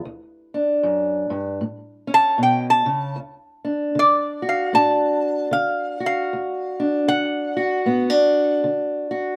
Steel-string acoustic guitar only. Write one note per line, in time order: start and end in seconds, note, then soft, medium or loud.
0.05 0.77 D2 medium
0.54 1.59 D4 medium
0.83 1.30 F#2 medium
1.30 1.61 G2 medium
1.61 2.33 A2 medium
2.07 3.13 C#4 medium
2.38 2.85 B2 medium
2.86 3.17 C#3 medium
3.16 3.88 D2 medium
3.65 4.73 D4 medium
3.95 4.67 D3 medium
4.42 6.00 F#4 medium
4.73 5.45 A2 medium
4.73 6.79 D4 medium
5.51 6.23 D3 medium
6.00 7.56 F#4 medium
6.33 7.03 D2 medium
6.80 7.86 D4 medium
7.08 7.79 D3 medium
7.57 9.10 F#4 medium
7.86 8.57 A2 medium
7.86 8.10 B3 medium
8.10 9.36 D4 soft
8.64 9.35 D3 medium
9.11 9.36 F#4 medium